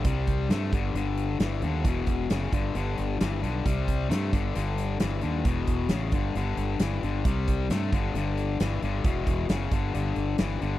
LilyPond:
<<
  \new Staff \with { instrumentName = "Distorted electric guitar" } { \clef bass \time 4/4 \key g \major \tempo 4 = 134 <c g>4 <c a>8 <g, d>8 <g, d>4 <g, e>8 <g, d>8 | <e, b,>4 <e, cis>8 <g, d>8 <g, d>4 <g, e>8 <g, d>8 | <c g>4 <c a>8 <g, d>8 <g, d>4 <g, e>8 <g, d>8 | <e, b,>4 <e, cis>8 <g, d>8 <g, d>4 <g, e>8 <g, d>8 |
<c g>4 <c a>8 <g, d>8 <g, d>4 <g, e>8 <g, d>8 | <e, b,>4 <e, cis>8 <g, d>8 <g, d>4 <g, e>8 <g, d>8 | }
  \new Staff \with { instrumentName = "Fingered electric bass" } { \clef bass \time 4/4 \key g \major c,4 g,8 g,,8 g,,4 g,,8 dis,8 | e,,8 e,,8 fis,,8 g,,8 g,,8 g,,8 g,,8 b,,8 | c,4 g,8 g,,8 g,,4 g,,8 dis,8 | e,,8 e,,8 a,,8 g,,8 g,,8 g,,8 g,,8 g,,8 |
c,4 g,8 g,,8 g,,4 g,,8 g,,8 | e,,8 e,,8 fis,,8 g,,8 g,,8 g,,8 g,,8 g,,8 | }
  \new DrumStaff \with { instrumentName = "Drums" } \drummode { \time 4/4 <hh bd>8 <hh bd>8 <hh sn>8 <hh bd>8 hh8 hh8 <hh sn>8 hh8 | <hh bd>8 <hh bd>8 <hh sn>8 <hh bd>8 hh8 hh8 <hh sn>8 hh8 | <hh bd>8 <hh bd>8 <hh sn>8 <hh bd>8 hh8 hh8 <hh sn>8 hh8 | <hh bd>8 <hh bd>8 <hh sn>8 <hh bd>8 hh8 hh8 <hh sn>8 hh8 |
<hh bd>8 <hh bd>8 <hh sn>8 <hh bd>8 hh8 hh8 <hh sn>8 hh8 | <hh bd>8 <hh bd>8 <hh sn>8 <hh bd>8 hh8 hh8 <hh sn>8 hh8 | }
>>